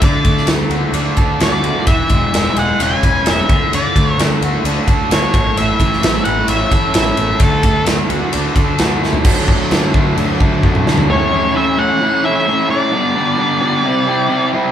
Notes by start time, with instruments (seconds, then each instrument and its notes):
0.02 picked electric bass D2, overdriven electric guitar D3, lead electric guitar D5, kick, ride
0.25 picked electric bass D2, overdriven electric guitar A3, kick, ride
0.37 snare
0.47 picked electric bass D2, overdriven electric guitar A3, snare, ride
0.70 picked electric bass D2, overdriven electric guitar F#4, ride
0.92 picked electric bass D2, overdriven electric guitar D4, ride
1.17 picked electric bass D2, overdriven electric guitar A4, kick, ride
1.40 picked electric bass D2, overdriven electric guitar F#4, lead electric guitar D5, snare, ride
1.64 overdriven electric guitar A3, ride
1.87 picked electric bass E1, overdriven electric guitar E3, lead electric guitar E5, kick, ride
2.09 picked electric bass E1, overdriven electric guitar G#3, kick, ride
2.32 picked electric bass E1, overdriven electric guitar G#3, snare, ride
2.56 picked electric bass E1, overdriven electric guitar G#4, lead electric guitar F#5, ride
2.80 picked electric bass E1, overdriven electric guitar C#4, lead electric guitar G#5, ride
3.03 picked electric bass E1, overdriven electric guitar B4, kick, ride
3.26 picked electric bass E1, overdriven electric guitar G#4, snare, ride
3.30 lead electric guitar E5
3.49 picked electric bass D2, overdriven electric guitar D3, kick, ride
3.73 picked electric bass D2, overdriven electric guitar D3, lead electric guitar D5, ride
3.96 picked electric bass D2, overdriven electric guitar A3, kick, ride
4.06 lead electric guitar C#5
4.18 picked electric bass D2, overdriven electric guitar A3, snare, ride
4.41 picked electric bass D2, overdriven electric guitar F#4, ride
4.64 picked electric bass D2, overdriven electric guitar D4, ride
4.88 picked electric bass D2, overdriven electric guitar A4, kick, ride
5.10 picked electric bass D2, overdriven electric guitar F#4, lead electric guitar C#5, snare, ride
5.34 picked electric bass A1, overdriven electric guitar A2, kick, ride
5.57 picked electric bass A1, overdriven electric guitar A2, lead electric guitar E5, ride
5.79 picked electric bass A1, overdriven electric guitar E3, kick, ride
5.93 snare
6.03 picked electric bass A1, overdriven electric guitar A3, snare, ride
6.24 picked electric bass A1, overdriven electric guitar E4, lead electric guitar F#5, ride
6.48 picked electric bass A1, overdriven electric guitar C#4, lead electric guitar E5, ride
6.71 picked electric bass A1, overdriven electric guitar A4, kick, ride
6.94 picked electric bass A1, overdriven electric guitar E4, lead electric guitar E5, snare, ride
7.17 picked electric bass A1, overdriven electric guitar A3, ride
7.40 picked electric bass D2, overdriven electric guitar D3, lead electric guitar A4, kick, ride
7.63 picked electric bass D2, overdriven electric guitar A3, kick, ride
7.86 picked electric bass D2, overdriven electric guitar A3, snare, ride
8.10 picked electric bass D2, overdriven electric guitar F#4, ride
8.33 picked electric bass D2, overdriven electric guitar D4, ride
8.56 picked electric bass D2, overdriven electric guitar A4, kick, ride
8.79 picked electric bass D2, overdriven electric guitar F#4, snare, ride
9.03 overdriven electric guitar A3, snare
9.13 floor tom
9.25 picked electric bass D2, overdriven electric guitar D3 F#3 A3 D4, kick, crash
9.48 picked electric bass D2, overdriven electric guitar F#3 A3 D4, kick
9.71 picked electric bass D2, overdriven electric guitar D3 F#3 A3 D4, snare, crash
9.94 overdriven electric guitar D3 F#3 A3 D4, kick
10.17 picked electric bass D2, overdriven electric guitar D3 F#3 A3 D4, crash
10.40 picked electric bass D2, overdriven electric guitar D3 F#3 A3 D4, kick
10.63 picked electric bass F#2, overdriven electric guitar D3 F#3 A3 D4, kick
10.75 mid tom
10.86 picked electric bass D2, overdriven electric guitar F#3 A3 D4, snare
10.98 floor tom
11.09 overdriven electric guitar A2 E3 A3 C#4 E4, lead electric guitar C#5
11.32 overdriven electric guitar A2 E3 A3 C#4 E4
11.55 overdriven electric guitar A2 E3 A3 C#4 E4, lead electric guitar E5
11.78 overdriven electric guitar A2 E3 A3 C#4 E4, lead electric guitar F#5
12.01 overdriven electric guitar A2 E3 A3 C#4 E4
12.23 overdriven electric guitar A2 E3 A3 C#4 E4, lead electric guitar E5
12.47 overdriven electric guitar A2 E3 A3 C#4 E4
12.68 overdriven electric guitar A2 E3 A3 C#4 E4, lead electric guitar D5
12.92 overdriven electric guitar G2 D3 G3 B3 D4
13.15 overdriven electric guitar G2 D3 G3 B3 D4
13.38 overdriven electric guitar G2 D3 G3 B3 D4
13.61 overdriven electric guitar G2 D3 G3 B3 D4
13.84 overdriven electric guitar C3 G3 C4 E4
14.06 overdriven electric guitar C3 G3 C4 E4
14.29 overdriven electric guitar C3 G3 C4 E4
14.53 overdriven electric guitar C3 G3 C4 E4